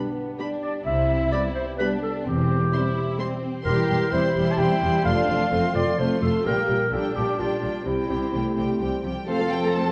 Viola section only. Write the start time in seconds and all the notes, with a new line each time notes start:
0.39 G3 G4
1.33 G3 G4
1.79 G3 G4
2.73 G3 G4
3.18 G3 G4
3.65 G3 G4
3.89 G3 G4
4.12 G3 G4
4.35 G3 G4
4.58 G3 G4
4.81 G3 G4
5.05 A3 F4
5.29 A3 F4
5.52 A3 F4
5.75 A3 F4
5.98 A3 F4
6.22 A3 F4
6.45 G3 G4
6.68 G3 G4
6.92 G3 G4
7.15 G3 G4
7.39 G3 G4
7.63 G3 G4
7.86 G3 G4
8.10 G3 G4
8.33 G3 G4
8.58 G3 G4
8.81 G3 G4
9.05 G3 G4
9.28 A3 C4
9.40 F3 A3
9.51 A3 C4
9.63 F3 A3
9.75 A3 C4
9.86 F3 A3